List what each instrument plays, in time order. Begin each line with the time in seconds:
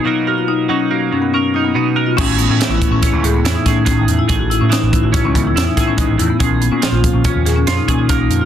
0.04 clean electric guitar B2 F#3 A#3 D#4 A#4, marimba D#4
0.27 marimba F#4, clean electric guitar A#4
0.38 marimba F4
0.48 marimba D#4
0.69 clean electric guitar F#3 D#4, marimba C#4
0.80 marimba D#4
0.91 clean electric guitar A#3, marimba F#4
1.12 clean electric guitar F#2, marimba C#4
1.22 marimba B3
1.34 marimba C#4, clean electric guitar A#4
1.54 marimba D#4, clean electric guitar D#4
1.65 marimba B3
1.75 clean electric guitar B2 D#4, marimba D#4
1.96 marimba F#4, clean electric guitar A#4
2.06 marimba F4
2.17 picked electric bass A1, clean electric guitar A2 E3 C#4 E4 G#4, marimba C#4, kick, crash
2.38 marimba B3, closed hi-hat
2.49 picked electric bass A2, marimba C#4
2.60 clean electric guitar E3, snare, closed hi-hat
2.70 picked electric bass A1, marimba E4
2.82 kick, closed hi-hat
2.91 picked electric bass A1, marimba C#4
3.02 clean electric guitar C#4, marimba E4, kick, snare, closed hi-hat
3.13 picked electric bass C#2
3.23 clean electric guitar A2, marimba G#4, closed hi-hat
3.34 marimba B3
3.43 picked electric bass E2, clean electric guitar E4, snare, closed hi-hat
3.55 marimba D#4
3.66 picked electric bass A2, marimba C#4, clean electric guitar G#4, kick, snare, closed hi-hat
3.76 marimba D#4
3.85 picked electric bass A1, clean electric guitar A2 G#4, marimba C#4, kick, snare, closed hi-hat
3.97 marimba D#4
4.08 picked electric bass E2, closed hi-hat
4.19 marimba E4
4.28 picked electric bass A1, clean electric guitar A2 G#4, kick, closed hi-hat
4.39 marimba F#4
4.50 marimba E4, closed hi-hat
4.61 picked electric bass A2, marimba C#4
4.69 clean electric guitar E3, marimba D#4, snare, closed hi-hat
4.83 picked electric bass A1
4.93 marimba E4, kick, closed hi-hat
5.03 picked electric bass A1, marimba F#4
5.13 clean electric guitar C#4, marimba E4, kick, snare, closed hi-hat
5.25 picked electric bass C#2, marimba C#4
5.35 clean electric guitar A2, marimba B3, kick, closed hi-hat
5.47 marimba E4
5.56 picked electric bass E2, clean electric guitar E4, snare, closed hi-hat
5.67 marimba D#4
5.77 picked electric bass A2, marimba E4, clean electric guitar G#4, kick, snare, closed hi-hat
5.88 marimba C#4
5.97 picked electric bass A1, clean electric guitar G#2, marimba D#4, kick, closed hi-hat
6.18 picked electric bass E2, clean electric guitar A2, marimba E4, closed hi-hat
6.30 marimba B3
6.40 picked electric bass A#1, clean electric guitar A#2 G#4, marimba C#4, kick, closed hi-hat
6.61 marimba B3, closed hi-hat
6.72 picked electric bass A#2, marimba C#4
6.82 clean electric guitar F3, snare, closed hi-hat
6.92 picked electric bass A#1, marimba F4
7.04 kick, closed hi-hat
7.13 picked electric bass A#1, marimba C#4
7.24 clean electric guitar C#4, marimba F4, kick, closed hi-hat
7.36 picked electric bass D#2
7.46 clean electric guitar A#2, marimba G#4, snare, closed hi-hat
7.56 marimba C#4
7.67 picked electric bass F2, clean electric guitar F4, snare, closed hi-hat
7.77 marimba D#4
7.88 picked electric bass A#2, marimba C#4, clean electric guitar G#4, kick, closed hi-hat
7.99 marimba D#4
8.09 picked electric bass A#1, clean electric guitar A#2 A#4, marimba C#4, kick, snare, closed hi-hat
8.20 marimba D#4
8.29 picked electric bass F2, closed hi-hat
8.41 marimba F4